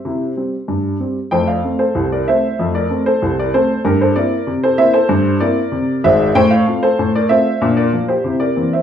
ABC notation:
X:1
M:2/4
L:1/16
Q:1/4=95
K:F
V:1 name="Upright piano"
[ce]4 z4 | [cg] [df]2 [Ac]2 [Bd] [ce]2- | [ce] [Bd]2 [Ac]2 [Bd] [Ac]2 | [GB] [Ac] [Bd]3 [Ac] [ce] [Ac]- |
[Ac]2 [Bd]4 [ce]2 | [cg] [df]2 [Ac]2 [Bd] [ce]2- | [ce] [Bd]2 [Gc]2 [Bd]2 [ce] |]
V:2 name="Upright piano"
[C,E]2 [G,C]2 G,,2 [G,C]2 | [F,,A,]2 [A,C]2 C,,2 [A,C]2 | [F,,A,]2 [A,C]2 C,,2 [A,C]2 | G,,2 [B,CE]2 C,2 [B,CE]2 |
G,,2 [B,CE]2 C,2 [_A,,,_A,,]2 | A,,2 [A,CF]2 A,,2 [A,CF]2 | [B,,D]2 [F,B,F]2 [C,E]2 [E,B,C]2 |]